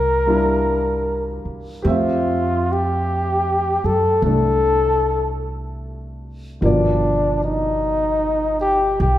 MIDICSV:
0, 0, Header, 1, 5, 480
1, 0, Start_track
1, 0, Tempo, 1195219
1, 742, Time_signature, 4, 2, 24, 8
1, 3688, End_track
2, 0, Start_track
2, 0, Title_t, "Flugelhorn"
2, 0, Program_c, 0, 56
2, 0, Note_on_c, 0, 70, 75
2, 569, Note_off_c, 0, 70, 0
2, 766, Note_on_c, 0, 65, 72
2, 1092, Note_on_c, 0, 67, 72
2, 1098, Note_off_c, 0, 65, 0
2, 1547, Note_on_c, 0, 69, 79
2, 1553, Note_off_c, 0, 67, 0
2, 1702, Note_off_c, 0, 69, 0
2, 1705, Note_on_c, 0, 69, 80
2, 2167, Note_off_c, 0, 69, 0
2, 2665, Note_on_c, 0, 62, 68
2, 2968, Note_off_c, 0, 62, 0
2, 2988, Note_on_c, 0, 63, 71
2, 3449, Note_off_c, 0, 63, 0
2, 3458, Note_on_c, 0, 67, 73
2, 3607, Note_off_c, 0, 67, 0
2, 3621, Note_on_c, 0, 67, 83
2, 3688, Note_off_c, 0, 67, 0
2, 3688, End_track
3, 0, Start_track
3, 0, Title_t, "Grand piano"
3, 0, Program_c, 1, 0
3, 0, Control_c, 1, 64, 127
3, 104, Note_on_c, 1, 55, 39
3, 108, Note_on_c, 1, 58, 37
3, 110, Note_on_c, 1, 62, 40
3, 112, Note_on_c, 1, 64, 46
3, 733, Note_on_c, 1, 67, 45
3, 740, Note_on_c, 1, 57, 38
3, 742, Note_off_c, 1, 55, 0
3, 744, Note_off_c, 1, 58, 0
3, 744, Note_on_c, 1, 60, 42
3, 745, Note_off_c, 1, 62, 0
3, 746, Note_off_c, 1, 64, 0
3, 747, Control_c, 1, 64, 0
3, 753, Note_on_c, 1, 76, 46
3, 828, Control_c, 1, 64, 127
3, 1691, Note_off_c, 1, 57, 0
3, 1697, Note_on_c, 1, 57, 37
3, 1710, Note_on_c, 1, 62, 37
3, 2654, Note_on_c, 1, 51, 38
3, 2656, Note_off_c, 1, 67, 0
3, 2659, Note_off_c, 1, 57, 0
3, 2659, Note_on_c, 1, 53, 39
3, 2662, Note_off_c, 1, 60, 0
3, 2665, Note_off_c, 1, 62, 0
3, 2665, Control_c, 1, 64, 0
3, 2666, Note_off_c, 1, 76, 0
3, 2670, Note_on_c, 1, 47, 39
3, 2673, Note_on_c, 1, 74, 48
3, 2742, Control_c, 1, 64, 127
3, 3688, Note_off_c, 1, 47, 0
3, 3688, Note_off_c, 1, 51, 0
3, 3688, Note_off_c, 1, 53, 0
3, 3688, Note_off_c, 1, 74, 0
3, 3688, End_track
4, 0, Start_track
4, 0, Title_t, "Upright bass"
4, 0, Program_c, 2, 32
4, 0, Note_on_c, 2, 36, 65
4, 566, Note_off_c, 2, 36, 0
4, 741, Note_on_c, 2, 41, 68
4, 1527, Note_off_c, 2, 41, 0
4, 1543, Note_on_c, 2, 42, 49
4, 1690, Note_off_c, 2, 42, 0
4, 1696, Note_on_c, 2, 36, 66
4, 2642, Note_off_c, 2, 36, 0
4, 2658, Note_on_c, 2, 31, 61
4, 3603, Note_off_c, 2, 31, 0
4, 3614, Note_on_c, 2, 35, 64
4, 3688, Note_off_c, 2, 35, 0
4, 3688, End_track
5, 0, Start_track
5, 0, Title_t, "Muted upright bass strokes"
5, 583, Note_on_c, 9, 29, 30
5, 623, Note_off_c, 9, 29, 0
5, 3688, End_track
0, 0, End_of_file